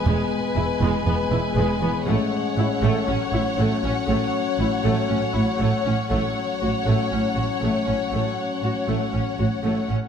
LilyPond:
<<
  \new Staff \with { instrumentName = "Violin section" } { \time 4/4 \key fis \minor \tempo 4 = 119 gis''1 | fis''1~ | fis''1 | fis''1~ |
fis''2.~ fis''8 r8 | }
  \new Staff \with { instrumentName = "Violin section" } { \time 4/4 \key fis \minor b'1 | cis''1~ | cis''1 | cis''1~ |
cis''2.~ cis''8 r8 | }
  \new Staff \with { instrumentName = "Viola section" } { \time 4/4 \key fis \minor gis8 r8 e'8 gis8 b8 e'8 gis8 b8 | a8 r8 e'8 a8 cis'8 e'8 a8 cis'8 | a8 r8 e'8 a8 cis'8 e'8 a8 cis'8 | a8 r8 fis'8 a8 cis'8 fis'8 a8 cis'8 |
a8 r8 fis'8 a8 cis'8 fis'8 a8 cis'8 | }
  \new Staff \with { instrumentName = "French horn section" } { \time 4/4 \key fis \minor << { b1 | cis'1~ | cis'1 | cis'1~ |
cis'2.~ cis'8 r8 | } \\ { gis1~ | gis2 fis2~ | fis1 | fis1~ |
fis2.~ fis8 r8 | } >> }
  \new Staff \with { instrumentName = "Cello section" } { \clef bass \time 4/4 \key fis \minor e,8 r8 e,8 e,8 e,8 e,8 e,8 e,8 | a,8 r8 a,8 a,8 a,8 a,8 a,8 a,8 | a,8 r8 a,8 a,8 a,8 a,8 a,8 a,8 | a,8 r8 a,8 a,8 a,8 a,8 a,8 a,8 |
a,8 r8 a,8 a,8 a,8 a,8 a,8 a,8 | }
  \new Staff \with { instrumentName = "Double bass section" } { \clef bass \time 4/4 \key fis \minor e,,8 r8 e,,8 e,,8 e,,8 e,,8 e,,8 e,,8 | a,,8 r8 a,,8 a,,8 a,,8 a,,8 a,,8 a,,8 | a,,8 r8 a,,8 a,,8 a,,8 a,,8 a,,8 a,,8 | a,,8 r8 a,,8 a,,8 a,,8 a,,8 a,,8 a,,8 |
a,,8 r8 a,,8 a,,8 a,,8 a,,8 a,,8 a,,8 | }
>>